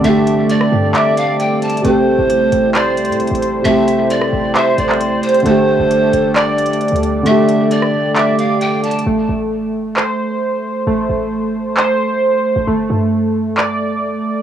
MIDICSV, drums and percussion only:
0, 0, Header, 1, 2, 480
1, 0, Start_track
1, 0, Key_signature, 0, "minor"
1, 0, Tempo, 451128
1, 45, Time_signature, 4, 2, 24, 8
1, 15346, End_track
2, 0, Start_track
2, 0, Title_t, "Drums"
2, 45, Note_on_c, 9, 42, 86
2, 151, Note_off_c, 9, 42, 0
2, 287, Note_on_c, 9, 42, 78
2, 394, Note_off_c, 9, 42, 0
2, 526, Note_on_c, 9, 42, 89
2, 633, Note_off_c, 9, 42, 0
2, 646, Note_on_c, 9, 37, 93
2, 752, Note_off_c, 9, 37, 0
2, 1004, Note_on_c, 9, 39, 110
2, 1007, Note_on_c, 9, 42, 70
2, 1110, Note_off_c, 9, 39, 0
2, 1114, Note_off_c, 9, 42, 0
2, 1247, Note_on_c, 9, 42, 80
2, 1353, Note_off_c, 9, 42, 0
2, 1486, Note_on_c, 9, 42, 90
2, 1592, Note_off_c, 9, 42, 0
2, 1724, Note_on_c, 9, 46, 54
2, 1725, Note_on_c, 9, 42, 60
2, 1804, Note_off_c, 9, 42, 0
2, 1804, Note_on_c, 9, 42, 62
2, 1830, Note_off_c, 9, 46, 0
2, 1884, Note_off_c, 9, 42, 0
2, 1884, Note_on_c, 9, 42, 61
2, 1964, Note_off_c, 9, 42, 0
2, 1964, Note_on_c, 9, 42, 84
2, 2071, Note_off_c, 9, 42, 0
2, 2445, Note_on_c, 9, 42, 89
2, 2551, Note_off_c, 9, 42, 0
2, 2684, Note_on_c, 9, 42, 74
2, 2791, Note_off_c, 9, 42, 0
2, 2923, Note_on_c, 9, 39, 112
2, 2926, Note_on_c, 9, 42, 68
2, 3029, Note_off_c, 9, 39, 0
2, 3033, Note_off_c, 9, 42, 0
2, 3164, Note_on_c, 9, 42, 68
2, 3244, Note_off_c, 9, 42, 0
2, 3244, Note_on_c, 9, 42, 68
2, 3324, Note_off_c, 9, 42, 0
2, 3324, Note_on_c, 9, 42, 65
2, 3404, Note_off_c, 9, 42, 0
2, 3404, Note_on_c, 9, 42, 65
2, 3484, Note_off_c, 9, 42, 0
2, 3484, Note_on_c, 9, 42, 62
2, 3565, Note_off_c, 9, 42, 0
2, 3565, Note_on_c, 9, 42, 68
2, 3643, Note_off_c, 9, 42, 0
2, 3643, Note_on_c, 9, 42, 78
2, 3750, Note_off_c, 9, 42, 0
2, 3884, Note_on_c, 9, 42, 82
2, 3991, Note_off_c, 9, 42, 0
2, 4127, Note_on_c, 9, 42, 77
2, 4233, Note_off_c, 9, 42, 0
2, 4365, Note_on_c, 9, 42, 89
2, 4472, Note_off_c, 9, 42, 0
2, 4485, Note_on_c, 9, 37, 95
2, 4591, Note_off_c, 9, 37, 0
2, 4844, Note_on_c, 9, 39, 113
2, 4847, Note_on_c, 9, 42, 70
2, 4950, Note_off_c, 9, 39, 0
2, 4953, Note_off_c, 9, 42, 0
2, 5086, Note_on_c, 9, 42, 80
2, 5193, Note_off_c, 9, 42, 0
2, 5205, Note_on_c, 9, 39, 66
2, 5311, Note_off_c, 9, 39, 0
2, 5325, Note_on_c, 9, 42, 90
2, 5431, Note_off_c, 9, 42, 0
2, 5564, Note_on_c, 9, 42, 73
2, 5625, Note_off_c, 9, 42, 0
2, 5625, Note_on_c, 9, 42, 63
2, 5685, Note_off_c, 9, 42, 0
2, 5685, Note_on_c, 9, 42, 53
2, 5745, Note_off_c, 9, 42, 0
2, 5745, Note_on_c, 9, 42, 41
2, 5804, Note_off_c, 9, 42, 0
2, 5804, Note_on_c, 9, 42, 85
2, 5911, Note_off_c, 9, 42, 0
2, 6285, Note_on_c, 9, 42, 91
2, 6391, Note_off_c, 9, 42, 0
2, 6524, Note_on_c, 9, 42, 77
2, 6631, Note_off_c, 9, 42, 0
2, 6763, Note_on_c, 9, 39, 110
2, 6766, Note_on_c, 9, 42, 69
2, 6869, Note_off_c, 9, 39, 0
2, 6872, Note_off_c, 9, 42, 0
2, 7004, Note_on_c, 9, 42, 69
2, 7084, Note_off_c, 9, 42, 0
2, 7084, Note_on_c, 9, 42, 69
2, 7164, Note_off_c, 9, 42, 0
2, 7164, Note_on_c, 9, 42, 65
2, 7244, Note_off_c, 9, 42, 0
2, 7244, Note_on_c, 9, 42, 62
2, 7323, Note_off_c, 9, 42, 0
2, 7323, Note_on_c, 9, 42, 61
2, 7404, Note_off_c, 9, 42, 0
2, 7404, Note_on_c, 9, 42, 68
2, 7482, Note_off_c, 9, 42, 0
2, 7482, Note_on_c, 9, 42, 76
2, 7589, Note_off_c, 9, 42, 0
2, 7724, Note_on_c, 9, 42, 82
2, 7830, Note_off_c, 9, 42, 0
2, 7966, Note_on_c, 9, 42, 75
2, 8072, Note_off_c, 9, 42, 0
2, 8204, Note_on_c, 9, 42, 91
2, 8311, Note_off_c, 9, 42, 0
2, 8324, Note_on_c, 9, 37, 94
2, 8430, Note_off_c, 9, 37, 0
2, 8683, Note_on_c, 9, 39, 112
2, 8686, Note_on_c, 9, 42, 70
2, 8789, Note_off_c, 9, 39, 0
2, 8792, Note_off_c, 9, 42, 0
2, 8926, Note_on_c, 9, 42, 80
2, 9032, Note_off_c, 9, 42, 0
2, 9164, Note_on_c, 9, 42, 89
2, 9271, Note_off_c, 9, 42, 0
2, 9403, Note_on_c, 9, 46, 57
2, 9404, Note_on_c, 9, 42, 60
2, 9484, Note_off_c, 9, 42, 0
2, 9484, Note_on_c, 9, 42, 60
2, 9509, Note_off_c, 9, 46, 0
2, 9564, Note_off_c, 9, 42, 0
2, 9564, Note_on_c, 9, 42, 61
2, 9670, Note_off_c, 9, 42, 0
2, 10603, Note_on_c, 9, 39, 109
2, 10709, Note_off_c, 9, 39, 0
2, 12523, Note_on_c, 9, 39, 110
2, 12629, Note_off_c, 9, 39, 0
2, 14443, Note_on_c, 9, 39, 114
2, 14550, Note_off_c, 9, 39, 0
2, 15346, End_track
0, 0, End_of_file